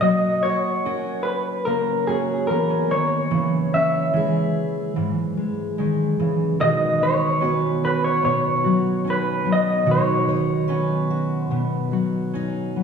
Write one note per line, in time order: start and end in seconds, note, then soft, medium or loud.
0.00 3.32 F#3 soft
0.00 1.67 A#3 medium
0.00 2.08 C#4 soft
0.00 0.86 F#4 soft
0.00 0.40 D#5 medium
0.43 3.28 F#4 soft
0.43 1.28 C#5 medium
0.85 2.69 C#4 soft
0.85 2.08 F#4 medium
0.85 1.27 A#4 soft
1.23 1.65 B4 medium
1.65 2.49 C#3 soft
1.65 2.90 A#3 soft
1.65 2.05 A#4 medium
2.07 3.74 C#4 soft
2.07 4.52 F#4 soft
2.07 2.46 G#4 medium
2.47 2.91 E3 soft
2.47 2.97 B3 soft
2.47 2.91 A#4 medium
2.70 5.59 C#4 soft
2.91 3.32 D#3 soft
2.91 6.12 A#3 soft
2.91 3.74 C#5 medium
3.31 4.97 C#3 soft
3.31 4.12 E3 medium
3.74 6.64 C#4 soft
3.74 6.16 E5 medium
4.13 4.95 E3 medium
4.13 5.77 G#3 medium
4.13 6.61 G#4 medium
4.96 6.60 G#2 soft
4.96 6.18 E3 soft
5.37 6.55 G#3 soft
5.78 6.20 D#3 soft
5.78 6.65 G#3 soft
6.19 6.61 C#3 soft
6.19 6.65 E3 medium
6.60 8.24 B2 medium
6.60 9.85 D#3 medium
6.60 7.41 F#4 medium
6.60 7.03 D#5 medium
7.02 9.06 D#4 soft
7.02 7.84 C#5 medium
7.40 8.22 B3 medium
7.40 9.04 C#4 medium
7.40 8.64 F#4 medium
7.40 10.67 B4 medium
7.85 11.10 F#4 soft
7.85 8.04 B4 medium
8.04 8.23 C#5 medium
8.23 9.83 B2 medium
8.23 9.44 B3 soft
8.23 9.08 C#5 medium
8.64 9.46 F#3 soft
8.64 9.86 F#4 soft
9.04 10.69 C#4 soft
9.04 9.83 D#4 medium
9.10 9.50 B4 medium
9.45 11.90 F#3 soft
9.45 10.68 B3 soft
9.52 9.87 D#5 medium
9.86 11.50 B2 soft
9.86 12.83 D#3 medium
9.86 10.69 F#4 medium
9.91 11.45 C#5 medium
10.28 12.34 D#4 soft
10.68 11.51 B3 medium
10.68 12.33 C#4 medium
10.68 11.92 F#4 medium
10.68 12.83 B4 medium
11.10 12.83 F#4 soft
11.45 12.32 B4 medium
11.51 12.83 B2 medium
11.51 12.76 B3 soft
11.92 12.75 F#3 soft
11.92 12.83 F#4 soft
12.34 12.83 C#4 soft
12.34 12.83 D#4 soft
12.76 12.83 F#3 soft
12.76 12.83 B3 soft